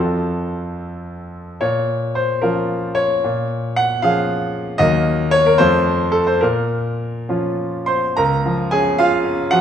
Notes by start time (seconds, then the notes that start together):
Already playing: F2 F3 C4 F4 A4
1.61 A#2 C#5
2.15 C5
2.41 F3 C#4 F4 A#4
2.95 C#5
3.24 A#2
3.76 F#5
4.02 F3 C#4 G#4 F5
4.78 D#2 F#3 A#3 A#4 D#5
5.31 C#5
5.46 A#4
5.58 F2 F3 A3 F4 C5
6.12 A4
6.27 C5
6.41 A#2 A#4
7.29 F3 C#4 F4
7.86 C5 C6
8.16 C#2 A#4 A#5
8.46 F3
8.71 C#4 G#4 G#5
8.99 F4 F5
9.24 C#4
9.51 F3 F#4 F#5